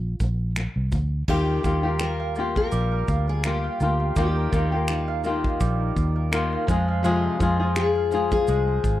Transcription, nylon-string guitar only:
0.20 A#2 F3
0.56 A#2 F3
0.92 A#2 F3
1.28 D#3 A#3 F4 G4
1.63 D#3 A#3 F4 G4
1.83 A#3 F4 G4
2.37 A#3 F4 G4
3.46 A#3 F4 G4
3.82 A#3 F4 G4
4.16 D#3 A#3 F4 G4
4.52 D#3 A#3 F4 G4
4.72 A#3 F4 G4
5.24 D#3 A#3 F4 G4
6.31 D#3 A#3 F4 G4
6.67 F3 G#3 F4 G#4
7.03 F2 C3 F3 G#3 F4 G#4
7.39 F3 G#3 F4 G#4
7.60 F3 G#3 F4 G#4
8.11 F3 G#3 F4 G#4

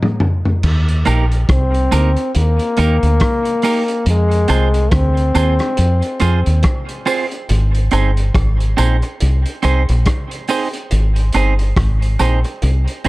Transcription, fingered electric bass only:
0.64 D#2
1.07 A#1
1.50 C2
1.93 D2
2.36 D#2
2.79 D#2
3.03 D2
4.06 F2
4.50 C2
4.92 D2
5.36 D#2
5.79 F2
6.22 F2
6.47 D#2
7.50 G#1
7.93 G1
8.35 G#1
8.79 A#1
9.22 C2
9.64 C2
9.89 A#1
10.92 G#1
11.35 G1
11.77 G#1
12.20 A#1
12.63 C2

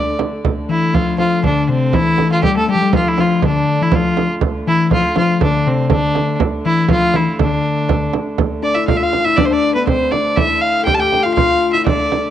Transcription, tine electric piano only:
Already playing: D4
0.69 E3
0.93 F3
1.18 F3
1.43 D3
1.68 C3
1.95 E3
2.44 G3
2.57 A3
2.68 G3
2.75 F3
2.82 G3
2.93 F3
3.18 F3
3.43 D3
3.81 E3
3.93 F3
4.67 E3
4.91 F3
5.16 F3
5.41 D3
5.66 C3
5.90 D3
6.65 E3
6.90 F3
7.14 E3
7.39 D3
8.63 D4
8.76 E4
8.88 F4
9.03 F4
9.26 E4
9.39 D4
9.51 D4
9.76 B3
9.90 C4
10.14 D4
10.37 E4
10.83 G4 A4
11.02 G4
11.26 F4
11.37 F4
11.74 E4
11.87 D4

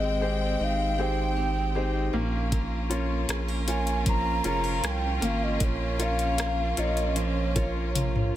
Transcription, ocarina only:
Already playing: D#5
0.64 F5
1.01 G5
3.68 G#5
4.09 A#5
4.46 A#5
4.85 G#5
4.90 G5
5.24 F5
5.44 D#5
5.64 C#5
6.02 F5
6.79 D#5
7.18 C#5

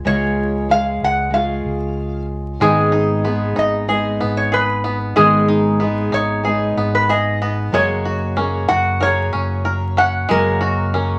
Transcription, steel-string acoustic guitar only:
0.05 C#3 G#3 C#4 F4 G#4
0.69 G#3 C#4 G#4
1.30 G#3 C#4
1.35 F4 G#4
2.60 G#2 D#3 G#3 B3 D#4 G#4
3.24 G#3 B3 D#4 G#4
3.88 G#3 B3 D#4
3.93 G#4
5.16 G#2 D#3 G#3 B3 D#4 G#4
5.80 G#3 B3 D#4 G#4
6.43 G#3 B3
6.47 D#4 G#4
7.72 F#3 A#3 C#4 F#4 G#4
8.38 A#3 C#4 F#4 G#4
9.00 A#3 C#4
9.04 F#4 G#4
10.30 F#3 A#3 C#4 F#4 G#4
10.94 A#3 C#4 F#4 G#4

